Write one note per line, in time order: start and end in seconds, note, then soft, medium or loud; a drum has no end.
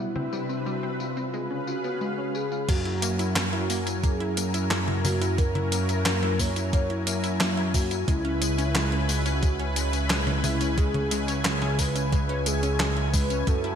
0.00 1.32 C3 medium
0.00 0.10 G3 medium
0.00 1.32 C4 medium
0.00 1.32 D4 medium
0.00 0.68 E4 medium
0.00 1.32 B4 medium
0.00 1.32 E5 medium
0.16 0.27 C4 loud
0.16 mid tom medium
0.33 0.49 G3 loud
0.33 tambourine medium
0.49 0.61 C4 medium
0.49 tambourine soft
0.66 0.82 G3 loud
0.66 0.99 F#4 medium
0.66 tambourine soft
0.83 0.99 C4 loud
1.00 1.11 G3 medium
1.00 1.63 F4 medium
1.00 tambourine medium
1.17 1.28 C4 medium
1.17 tambourine soft
1.34 2.67 C#3 medium
1.34 1.50 G#3 loud
1.34 2.67 C#4 medium
1.34 2.67 G#4 medium
1.34 2.67 B4 medium
1.34 2.67 F5 medium
1.34 tambourine soft
1.51 1.62 C#4 medium
1.67 1.79 F4 medium
1.67 2.36 F#4 loud
1.67 tambourine medium
1.84 2.00 B3 loud
1.84 tambourine soft
2.01 2.17 G#3 loud
2.01 tambourine soft
2.18 2.29 C#4 medium
2.35 2.51 C#4 medium
2.35 2.70 G#4 loud
2.35 tambourine medium
2.52 2.68 F4 medium
2.52 tambourine soft
2.69 8.05 F#2 medium
2.69 8.04 F#3 medium
2.69 2.85 A#3 loud
2.69 13.75 C#4 medium
2.69 13.75 E4 medium
2.69 4.05 F#4 loud
2.69 8.04 A#4 loud
2.69 13.75 G#5 medium
2.69 kick loud
2.69 closed hi-hat medium
2.69 crash loud
2.69 tambourine soft
2.85 2.97 E4 medium
2.85 closed hi-hat soft
3.02 3.18 A#3 loud
3.02 closed hi-hat loud
3.02 tambourine medium
3.19 3.35 E4 loud
3.19 closed hi-hat medium
3.19 tambourine soft
3.36 3.47 A#3 medium
3.36 snare loud
3.36 clap loud
3.36 closed hi-hat medium
3.36 tambourine soft
3.53 3.64 E4 loud
3.53 closed hi-hat soft
3.70 3.86 A#3 loud
3.70 open hi-hat medium
3.70 tambourine medium
3.87 3.98 E4 medium
3.87 closed hi-hat medium
3.87 tambourine soft
4.03 4.20 A#3 loud
4.03 4.71 G#4 loud
4.03 kick loud
4.03 closed hi-hat medium
4.03 tambourine soft
4.20 4.36 E4 loud
4.20 closed hi-hat soft
4.37 4.48 A#3 medium
4.37 closed hi-hat loud
4.37 tambourine medium
4.54 4.65 E4 loud
4.54 closed hi-hat medium
4.54 tambourine soft
4.71 4.87 A#3 loud
4.71 snare loud
4.71 clap loud
4.71 closed hi-hat medium
4.71 tambourine soft
4.88 4.99 E4 medium
4.88 closed hi-hat soft
4.88 mid tom medium
5.05 5.21 A#3 loud
5.05 5.36 F#4 loud
5.05 open hi-hat medium
5.05 mid tom medium
5.05 tambourine medium
5.21 5.37 E4 loud
5.21 closed hi-hat medium
5.21 tambourine soft
5.38 5.50 A#3 medium
5.38 6.02 A#4 loud
5.38 kick loud
5.38 closed hi-hat medium
5.38 tambourine soft
5.55 5.66 E4 loud
5.55 closed hi-hat soft
5.55 mid tom medium
5.72 5.88 A#3 loud
5.72 closed hi-hat loud
5.72 tambourine medium
5.89 6.00 E4 medium
5.89 closed hi-hat medium
5.89 tambourine soft
6.06 6.22 A#3 loud
6.06 6.41 A#4 loud
6.06 snare loud
6.06 clap loud
6.06 closed hi-hat medium
6.06 tambourine soft
6.23 6.39 E4 loud
6.23 snare soft
6.23 closed hi-hat soft
6.39 6.51 A#3 medium
6.39 6.73 C#5 loud
6.39 kick medium
6.39 open hi-hat medium
6.39 tambourine medium
6.56 6.68 E4 loud
6.56 closed hi-hat medium
6.56 tambourine soft
6.73 6.89 A#3 loud
6.73 7.05 C#5 loud
6.73 kick loud
6.73 closed hi-hat medium
6.73 tambourine soft
6.90 7.01 E4 medium
6.90 closed hi-hat soft
7.07 7.23 A#3 loud
7.07 7.76 E4 loud
7.07 closed hi-hat loud
7.07 tambourine medium
7.24 7.40 E4 loud
7.24 closed hi-hat medium
7.24 tambourine soft
7.41 7.52 A#3 medium
7.41 snare loud
7.41 clap loud
7.41 closed hi-hat medium
7.41 tambourine soft
7.57 7.69 E4 loud
7.57 closed hi-hat soft
7.74 7.90 A#3 loud
7.74 8.09 F#4 loud
7.74 kick loud
7.74 open hi-hat medium
7.74 tambourine medium
7.91 8.02 E4 medium
7.91 closed hi-hat medium
7.91 tambourine soft
8.08 13.44 C#2 medium
8.08 13.43 C#3 medium
8.08 8.24 G#3 loud
8.08 9.11 E4 loud
8.08 13.43 B4 loud
8.08 kick loud
8.08 closed hi-hat medium
8.08 tambourine soft
8.25 8.41 C#4 loud
8.25 closed hi-hat soft
8.41 8.53 G#3 medium
8.41 closed hi-hat loud
8.41 tambourine medium
8.58 8.70 C#4 loud
8.58 closed hi-hat medium
8.58 tambourine soft
8.75 8.91 G#3 loud
8.75 snare loud
8.75 clap medium
8.75 closed hi-hat medium
8.75 tambourine soft
8.92 9.03 C#4 medium
8.92 closed hi-hat soft
9.09 9.25 G#3 loud
9.09 10.10 F#4 medium
9.09 open hi-hat medium
9.09 tambourine medium
9.26 9.42 C#4 loud
9.26 closed hi-hat medium
9.26 tambourine soft
9.43 9.54 G#3 medium
9.43 kick loud
9.43 closed hi-hat medium
9.43 tambourine soft
9.59 9.71 C#4 loud
9.59 closed hi-hat soft
9.76 9.92 G#3 loud
9.76 closed hi-hat medium
9.76 tambourine medium
9.93 10.05 C#4 medium
9.93 closed hi-hat medium
9.93 tambourine soft
10.10 10.26 G#3 loud
10.10 snare loud
10.10 clap medium
10.10 closed hi-hat medium
10.10 tambourine soft
10.27 10.43 C#4 loud
10.27 closed hi-hat soft
10.27 mid tom medium
10.44 10.55 G#3 medium
10.44 10.79 E4 loud
10.44 open hi-hat medium
10.44 mid tom loud
10.44 tambourine medium
10.61 10.72 C#4 loud
10.61 closed hi-hat medium
10.61 tambourine soft
10.78 10.94 G#3 loud
10.78 11.45 G#4 loud
10.78 kick loud
10.78 closed hi-hat medium
10.78 tambourine soft
10.94 11.06 C#4 medium
10.94 closed hi-hat soft
10.94 mid tom medium
11.11 11.27 G#3 loud
11.11 closed hi-hat medium
11.11 tambourine medium
11.28 11.44 C#4 loud
11.28 closed hi-hat medium
11.28 tambourine soft
11.45 11.56 G#3 medium
11.45 11.80 G#4 loud
11.45 snare loud
11.45 clap medium
11.45 closed hi-hat medium
11.45 tambourine soft
11.62 11.73 C#4 loud
11.62 snare soft
11.62 closed hi-hat soft
11.79 11.95 G#3 loud
11.79 12.12 B4 loud
11.79 kick medium
11.79 open hi-hat medium
11.79 tambourine medium
11.96 12.07 C#4 medium
11.96 closed hi-hat medium
11.96 tambourine soft
12.12 12.29 G#3 loud
12.12 12.48 B4 loud
12.12 kick loud
12.12 closed hi-hat medium
12.12 tambourine soft
12.29 12.45 C#4 loud
12.29 closed hi-hat soft
12.46 12.57 G#3 medium
12.46 13.13 G#4 loud
12.46 closed hi-hat medium
12.46 tambourine medium
12.63 12.74 C#4 loud
12.63 closed hi-hat medium
12.63 tambourine soft
12.80 12.96 G#3 loud
12.80 snare loud
12.80 clap medium
12.80 closed hi-hat medium
12.80 tambourine soft
12.97 13.08 C#4 medium
12.97 closed hi-hat soft
13.14 13.30 G#3 loud
13.14 13.49 B4 loud
13.14 kick loud
13.14 open hi-hat medium
13.14 tambourine medium
13.30 13.46 C#4 loud
13.30 closed hi-hat medium
13.30 tambourine soft
13.47 13.75 F#2 medium
13.47 13.75 F#3 medium
13.47 13.59 A3 medium
13.47 13.75 A3 loud
13.47 13.75 A4 loud
13.47 kick loud
13.47 closed hi-hat medium
13.47 tambourine soft
13.64 13.75 E4 loud
13.64 closed hi-hat soft